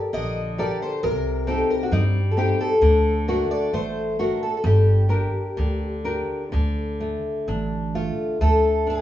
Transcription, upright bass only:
0.13 0.71 A#1 medium
1.03 1.61 C2 loud
1.91 2.50 G2 medium
2.81 3.41 D2 loud
3.73 4.32 A1 medium
4.64 5.25 G1 loud
5.58 6.20 D2 medium
6.53 7.15 D2 loud
7.48 8.08 A1 loud
8.41 9.00 D2 loud

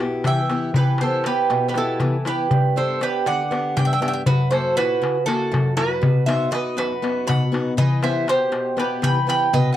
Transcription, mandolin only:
0.00 0.46 B4 medium
0.27 0.72 E5 medium
0.77 0.99 G4 medium
1.03 1.25 A4 medium
1.27 1.66 G4 medium
1.68 1.75 G4 medium
1.77 2.23 E4 medium
2.28 2.74 G4 medium
2.77 3.00 A4 medium
3.03 3.26 G4 medium
3.28 3.74 D5 medium
3.79 3.85 D5 medium
3.87 3.92 E5 soft
3.94 3.99 E5 medium
4.02 4.07 E5 medium
4.08 4.13 E5 medium
4.14 4.21 E5 medium
4.27 4.50 F#4 medium
4.53 4.76 A4 medium
4.78 5.24 F#4 medium
5.27 5.74 F#4 medium
5.77 6.24 F#4 medium
6.29 6.51 C5 medium
6.55 6.77 B4 medium
6.78 7.24 F#4 medium
7.29 7.75 F#5 medium
7.79 8.02 B4 medium
8.03 8.27 C5 medium
8.30 8.76 G4 medium
8.79 9.02 G4 medium
9.04 9.27 G5 medium
9.29 9.52 G5 medium
9.54 9.71 B4 medium
9.73 9.77 D#5 medium

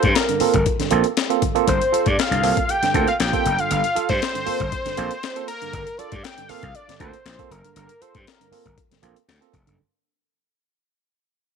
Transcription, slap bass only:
0.04 0.13 G2 loud
0.41 muted slap bass stroke soft
0.54 0.64 G1 medium
0.80 muted slap bass stroke medium
0.92 1.02 A#1 loud
1.68 1.78 G1 medium
1.93 muted slap bass stroke soft
2.07 2.16 G2 loud
2.18 muted slap bass stroke medium
2.31 2.51 C2 medium
2.83 muted slap bass stroke soft
2.95 3.05 D2 medium
3.20 3.30 A#1 loud
3.46 3.56 F#1 loud
3.71 3.81 G1 loud
3.97 muted slap bass stroke soft
4.10 4.19 G2 medium
4.47 muted slap bass stroke soft
4.60 4.70 G1 medium
4.86 muted slap bass stroke soft
4.98 5.08 A#1 loud
5.73 5.84 G1 medium
5.99 muted slap bass stroke soft
6.13 6.22 G2 loud
6.50 muted slap bass stroke medium
6.63 6.72 C2 medium
6.89 muted slap bass stroke soft
7.00 7.11 D2 loud
7.25 7.36 A#1 loud
7.51 7.61 F#1 medium
7.76 7.87 G1 loud
8.02 muted slap bass stroke soft
8.15 8.24 G2 medium
8.51 muted slap bass stroke soft
8.66 8.75 G1 medium
8.92 muted slap bass stroke medium
9.03 9.13 A#1 medium
9.28 9.39 D2 medium
9.54 9.64 F1 loud
9.68 9.77 F#1 medium

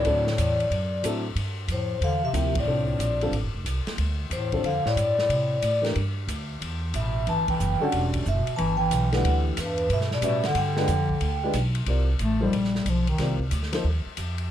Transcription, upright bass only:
0.05 0.37 D2 medium
0.38 0.70 E2 medium
0.70 1.02 F#2 medium
1.03 1.34 A2 medium
1.35 1.67 G2 medium
1.68 2.00 F2 medium
2.01 2.33 E2 medium
2.33 2.65 D2 medium
2.66 2.98 C2 medium
2.99 3.31 A#1 medium
3.31 3.44 A1 medium
3.43 3.54 G1 medium
3.54 3.64 F1 medium
3.65 3.85 C2 medium
3.86 muted upright bass stroke soft
3.98 4.29 D2 medium
4.30 4.62 E2 medium
4.63 4.83 F2 medium
4.85 muted upright bass stroke soft
4.96 5.28 G2 medium
5.29 5.61 C3 medium
5.62 5.94 A2 medium
5.96 6.27 G2 medium
6.27 6.60 D2 medium
6.61 6.93 E2 medium
6.94 7.26 A1 medium
7.27 7.59 G1 medium
7.60 7.80 F#1 medium
7.93 8.25 E1 medium
8.26 8.46 F#1 medium
8.47 muted upright bass stroke soft
8.58 8.90 G1 medium
8.91 9.23 B1 medium
9.24 9.56 D2 medium
9.57 9.88 E2 medium
9.89 10.21 G2 medium
10.21 10.54 A2 medium
10.54 10.87 G2 medium
10.88 11.20 F2 medium
11.21 11.53 D2 medium
11.53 11.86 B1 medium
11.86 12.19 C2 medium
12.20 12.52 A1 medium
12.53 12.85 A#1 medium
12.85 13.18 B1 medium
13.18 13.51 C2 medium
13.51 13.83 D2 medium
13.84 14.04 D#2 medium
14.06 muted upright bass stroke soft
14.17 14.49 F2 medium

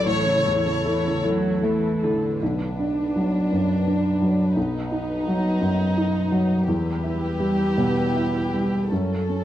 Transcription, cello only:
0.07 0.27 E3 medium
0.26 0.47 C#3 soft
0.46 0.67 E3 soft
0.66 0.85 C#3 soft
0.87 1.08 E3 soft
1.07 1.25 C#3 soft
1.26 1.67 F#3 medium
1.65 2.05 E3 medium
2.03 2.41 D3 medium

